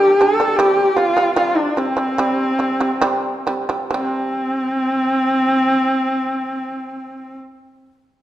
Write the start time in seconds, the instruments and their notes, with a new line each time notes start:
Already playing: shamisen G3 D4, horsehead fiddle G4
0.19 shamisen G3 D4, horsehead fiddle A4
0.40 shamisen G3 D4
0.56 shamisen C3 G3, horsehead fiddle G4
0.96 shamisen C3 G3, horsehead fiddle F4
1.17 shamisen C3 G3
1.36 shamisen C3 G3, horsehead fiddle F4
1.57 horsehead fiddle D4
1.76 shamisen C3 G3, horsehead fiddle C4
1.97 shamisen C3 G3
2.18 shamisen C3 G3
2.59 shamisen C3 G3
2.80 shamisen C3 G3
3.01 shamisen C3 G3
3.47 shamisen C3 G3
3.69 shamisen C3 G3
3.91 shamisen C3 G3, horsehead fiddle C4